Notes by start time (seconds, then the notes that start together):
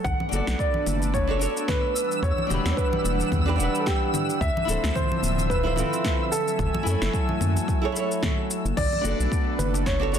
0.04 B1 A3 B3 D4 F#5 E6, kick, low conga, shaker
0.20 low conga
0.29 F#1 D4 F#4, high conga, shaker
0.33 A4 D5
0.47 B1, snare, shaker
0.59 D5, kick, shaker
0.74 low conga
0.86 F#1, high conga, low conga, shaker
1.02 low conga, shaker
1.14 C#5, kick, shaker
1.27 D4 F#4 A4 C#5
1.39 D4 F#4 A4 C#5, shaker
1.57 shaker
1.68 B4, kick, snare, low conga, shaker
1.95 E3 G3 D4 F#5, shaker
2.12 shaker
2.22 E2 C#5, kick, shaker
2.38 low conga
2.47 E1 D4 F#4, high conga, low conga
2.51 G4 B4, shaker
2.65 E2, snare, shaker
2.71 C#5
2.77 B4, kick, shaker
2.93 low conga
3.04 E1, high conga, shaker
3.20 low conga, shaker
3.32 E2, kick, low conga, shaker
3.46 D4 F#4 G4 B4
3.56 E1 D4 F#5
3.60 G4 B4, shaker
3.75 shaker
3.80 A4
3.86 G4, kick, snare, shaker
4.14 low conga, shaker
4.30 shaker
4.41 D2 D3 F3 C4 E5, kick, shaker
4.57 low conga
4.65 D1 E4 F4, high conga
4.69 A4 C5, shaker
4.84 D2, snare, shaker
4.95 C5, kick, low conga, shaker
5.12 low conga
5.23 D1, high conga, shaker
5.38 low conga, shaker
5.50 B4, kick, shaker
5.63 E4 F4 C5
5.76 C4 E4 F4 A4, low conga, shaker
5.93 shaker
6.05 kick, snare, shaker
6.32 F#3 A3 A4 G#5, shaker
6.48 shaker
6.59 F#1, kick, low conga, shaker
6.75 low conga
6.83 F#2 E4 G#5
6.87 A4 C#5, high conga, shaker
7.02 F#1, snare, shaker
7.14 kick, shaker
7.29 low conga
7.41 F#2, high conga, low conga, shaker
7.56 low conga, shaker
7.68 kick, shaker
7.82 E4 G#4 A4 C#5
7.92 E4 G#4, shaker
7.97 A4 C#5
8.11 shaker
8.23 kick, snare, low conga, shaker
8.51 shaker
8.65 F#1, high conga, shaker
8.77 B1 A3 B3 D4 D5, kick, crash, low conga, shaker
8.93 low conga
9.01 F#1 D4 F#4, high conga, shaker
9.05 A4 D5
9.20 B1, shaker
9.32 kick, shaker
9.59 F#1 B4, high conga, low conga, shaker
9.74 high bongo, shaker
9.86 C#5, kick, snare, shaker
10.00 D4 F#4 A4 C#5
10.12 D4 F#4 A4 C#5, shaker